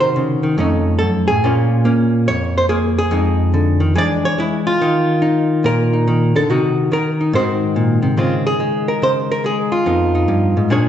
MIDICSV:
0, 0, Header, 1, 2, 480
1, 0, Start_track
1, 0, Key_signature, -5, "minor"
1, 0, Tempo, 422238
1, 1606, Time_signature, 4, 2, 24, 8
1, 12376, End_track
2, 0, Start_track
2, 0, Title_t, "Hollow-body jazz guitar"
2, 0, Program_c, 0, 26
2, 0, Note_on_c, 0, 48, 75
2, 0, Note_on_c, 0, 51, 52
2, 0, Note_on_c, 0, 63, 48
2, 0, Note_on_c, 0, 66, 51
2, 5, Note_on_c, 0, 72, 92
2, 181, Note_on_c, 0, 49, 63
2, 478, Note_off_c, 0, 51, 0
2, 488, Note_off_c, 0, 49, 0
2, 492, Note_on_c, 0, 51, 61
2, 631, Note_off_c, 0, 48, 0
2, 639, Note_off_c, 0, 63, 0
2, 642, Note_off_c, 0, 66, 0
2, 651, Note_off_c, 0, 51, 0
2, 656, Note_on_c, 0, 41, 82
2, 664, Note_on_c, 0, 57, 54
2, 672, Note_on_c, 0, 61, 39
2, 684, Note_on_c, 0, 63, 53
2, 1116, Note_off_c, 0, 72, 0
2, 1121, Note_on_c, 0, 69, 87
2, 1131, Note_off_c, 0, 41, 0
2, 1139, Note_on_c, 0, 42, 58
2, 1439, Note_off_c, 0, 69, 0
2, 1448, Note_off_c, 0, 42, 0
2, 1451, Note_on_c, 0, 68, 97
2, 1472, Note_on_c, 0, 45, 58
2, 1598, Note_off_c, 0, 57, 0
2, 1598, Note_off_c, 0, 61, 0
2, 1606, Note_off_c, 0, 63, 0
2, 1622, Note_off_c, 0, 45, 0
2, 1635, Note_on_c, 0, 46, 68
2, 1643, Note_on_c, 0, 58, 51
2, 1649, Note_on_c, 0, 61, 52
2, 1659, Note_on_c, 0, 65, 54
2, 2090, Note_off_c, 0, 58, 0
2, 2102, Note_off_c, 0, 61, 0
2, 2104, Note_on_c, 0, 58, 62
2, 2116, Note_on_c, 0, 61, 46
2, 2572, Note_off_c, 0, 68, 0
2, 2582, Note_off_c, 0, 46, 0
2, 2591, Note_on_c, 0, 73, 115
2, 2598, Note_on_c, 0, 41, 65
2, 2895, Note_off_c, 0, 73, 0
2, 2928, Note_on_c, 0, 72, 96
2, 3014, Note_off_c, 0, 72, 0
2, 3054, Note_off_c, 0, 58, 0
2, 3055, Note_off_c, 0, 65, 0
2, 3060, Note_on_c, 0, 68, 88
2, 3067, Note_on_c, 0, 58, 61
2, 3242, Note_off_c, 0, 68, 0
2, 3393, Note_on_c, 0, 68, 95
2, 3518, Note_off_c, 0, 58, 0
2, 3522, Note_off_c, 0, 41, 0
2, 3523, Note_off_c, 0, 61, 0
2, 3535, Note_on_c, 0, 41, 74
2, 3541, Note_on_c, 0, 56, 55
2, 3551, Note_on_c, 0, 63, 55
2, 4021, Note_on_c, 0, 50, 65
2, 4318, Note_off_c, 0, 56, 0
2, 4323, Note_on_c, 0, 51, 61
2, 4331, Note_off_c, 0, 50, 0
2, 4481, Note_off_c, 0, 63, 0
2, 4488, Note_off_c, 0, 51, 0
2, 4492, Note_off_c, 0, 41, 0
2, 4496, Note_on_c, 0, 52, 77
2, 4499, Note_on_c, 0, 56, 57
2, 4504, Note_off_c, 0, 68, 0
2, 4510, Note_on_c, 0, 62, 53
2, 4518, Note_on_c, 0, 68, 56
2, 4528, Note_on_c, 0, 74, 115
2, 4824, Note_off_c, 0, 74, 0
2, 4834, Note_on_c, 0, 73, 113
2, 4969, Note_off_c, 0, 56, 0
2, 4977, Note_off_c, 0, 62, 0
2, 4983, Note_on_c, 0, 56, 67
2, 4998, Note_on_c, 0, 64, 88
2, 5179, Note_off_c, 0, 64, 0
2, 5299, Note_off_c, 0, 73, 0
2, 5306, Note_on_c, 0, 65, 96
2, 5433, Note_off_c, 0, 52, 0
2, 5436, Note_off_c, 0, 56, 0
2, 5444, Note_off_c, 0, 68, 0
2, 5472, Note_on_c, 0, 51, 79
2, 5478, Note_on_c, 0, 63, 54
2, 5928, Note_off_c, 0, 63, 0
2, 5933, Note_on_c, 0, 63, 65
2, 6414, Note_on_c, 0, 46, 71
2, 6431, Note_on_c, 0, 70, 112
2, 6735, Note_off_c, 0, 65, 0
2, 6740, Note_off_c, 0, 63, 0
2, 6744, Note_on_c, 0, 63, 43
2, 6893, Note_off_c, 0, 51, 0
2, 6907, Note_on_c, 0, 51, 67
2, 7206, Note_off_c, 0, 46, 0
2, 7213, Note_off_c, 0, 51, 0
2, 7215, Note_off_c, 0, 70, 0
2, 7225, Note_on_c, 0, 50, 69
2, 7233, Note_on_c, 0, 69, 100
2, 7379, Note_off_c, 0, 50, 0
2, 7383, Note_off_c, 0, 69, 0
2, 7385, Note_on_c, 0, 48, 76
2, 7390, Note_on_c, 0, 51, 50
2, 7394, Note_on_c, 0, 66, 83
2, 7397, Note_off_c, 0, 63, 0
2, 7401, Note_on_c, 0, 63, 53
2, 7850, Note_off_c, 0, 51, 0
2, 7857, Note_off_c, 0, 66, 0
2, 7858, Note_off_c, 0, 48, 0
2, 7864, Note_on_c, 0, 51, 69
2, 7880, Note_on_c, 0, 70, 95
2, 8179, Note_off_c, 0, 63, 0
2, 8193, Note_on_c, 0, 63, 46
2, 8323, Note_off_c, 0, 63, 0
2, 8335, Note_off_c, 0, 51, 0
2, 8337, Note_on_c, 0, 44, 83
2, 8344, Note_off_c, 0, 70, 0
2, 8351, Note_on_c, 0, 51, 53
2, 8358, Note_on_c, 0, 60, 53
2, 8360, Note_on_c, 0, 72, 97
2, 8364, Note_on_c, 0, 66, 53
2, 8821, Note_on_c, 0, 46, 63
2, 9118, Note_off_c, 0, 46, 0
2, 9123, Note_on_c, 0, 48, 63
2, 9272, Note_off_c, 0, 44, 0
2, 9283, Note_off_c, 0, 60, 0
2, 9285, Note_off_c, 0, 66, 0
2, 9287, Note_off_c, 0, 48, 0
2, 9292, Note_on_c, 0, 49, 68
2, 9295, Note_on_c, 0, 56, 51
2, 9299, Note_off_c, 0, 72, 0
2, 9303, Note_on_c, 0, 65, 60
2, 9310, Note_on_c, 0, 60, 51
2, 9480, Note_off_c, 0, 65, 0
2, 9614, Note_off_c, 0, 60, 0
2, 9624, Note_on_c, 0, 68, 92
2, 9771, Note_off_c, 0, 56, 0
2, 9775, Note_on_c, 0, 56, 59
2, 10093, Note_off_c, 0, 68, 0
2, 10099, Note_on_c, 0, 70, 86
2, 10242, Note_off_c, 0, 49, 0
2, 10256, Note_on_c, 0, 49, 61
2, 10269, Note_on_c, 0, 72, 107
2, 10570, Note_off_c, 0, 70, 0
2, 10590, Note_on_c, 0, 70, 91
2, 10729, Note_off_c, 0, 56, 0
2, 10734, Note_on_c, 0, 56, 54
2, 10741, Note_off_c, 0, 70, 0
2, 10752, Note_on_c, 0, 68, 82
2, 11044, Note_off_c, 0, 72, 0
2, 11049, Note_on_c, 0, 65, 78
2, 11192, Note_off_c, 0, 49, 0
2, 11209, Note_on_c, 0, 41, 74
2, 11211, Note_off_c, 0, 56, 0
2, 11214, Note_off_c, 0, 51, 0
2, 11216, Note_on_c, 0, 63, 51
2, 11218, Note_on_c, 0, 59, 44
2, 11219, Note_off_c, 0, 68, 0
2, 11524, Note_off_c, 0, 63, 0
2, 11537, Note_on_c, 0, 63, 43
2, 11682, Note_off_c, 0, 41, 0
2, 11687, Note_on_c, 0, 43, 66
2, 12002, Note_off_c, 0, 43, 0
2, 12014, Note_on_c, 0, 44, 61
2, 12150, Note_off_c, 0, 59, 0
2, 12155, Note_off_c, 0, 63, 0
2, 12165, Note_on_c, 0, 46, 75
2, 12170, Note_off_c, 0, 65, 0
2, 12173, Note_off_c, 0, 44, 0
2, 12173, Note_on_c, 0, 58, 54
2, 12179, Note_on_c, 0, 62, 59
2, 12188, Note_on_c, 0, 68, 53
2, 12191, Note_on_c, 0, 73, 73
2, 12376, Note_off_c, 0, 46, 0
2, 12376, Note_off_c, 0, 58, 0
2, 12376, Note_off_c, 0, 62, 0
2, 12376, Note_off_c, 0, 68, 0
2, 12376, Note_off_c, 0, 73, 0
2, 12376, End_track
0, 0, End_of_file